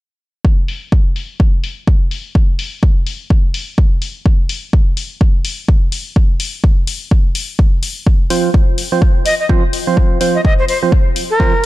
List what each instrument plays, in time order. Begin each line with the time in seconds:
0.45 kick
0.68 open hi-hat
0.92 kick
1.16 open hi-hat
1.40 kick
1.64 open hi-hat
1.87 kick
2.11 open hi-hat
2.35 kick
2.59 open hi-hat
2.83 kick
3.07 open hi-hat
3.30 kick
3.54 open hi-hat
3.78 kick
4.02 open hi-hat
4.26 kick
4.49 open hi-hat
4.73 kick
4.97 open hi-hat
5.21 kick
5.45 open hi-hat
5.68 kick
5.92 open hi-hat
6.16 kick
6.40 open hi-hat
6.64 kick
6.87 open hi-hat
7.11 kick
7.35 open hi-hat
7.59 kick
7.83 open hi-hat
8.07 kick
8.30 synth stab F3 C4 F4 C5, open hi-hat
8.54 kick
8.78 open hi-hat
8.92 synth stab F3 C4 F4 C5
9.02 kick
9.26 flute D#5, open hi-hat
9.40 flute D#5
9.49 synth stab F3 C4 F4 C5, kick
9.73 open hi-hat
9.87 synth stab F3 C4 F4 C5
9.97 kick
10.21 synth stab F3 C4 F4 C5, open hi-hat
10.35 flute D#5
10.45 flute D#5, kick
10.59 flute C5
10.69 flute C5, open hi-hat
10.83 synth stab F3 C4 F4 C5
10.92 kick
11.16 open hi-hat
11.30 flute A#4
11.40 synth stab F3 C4 F4 C5, kick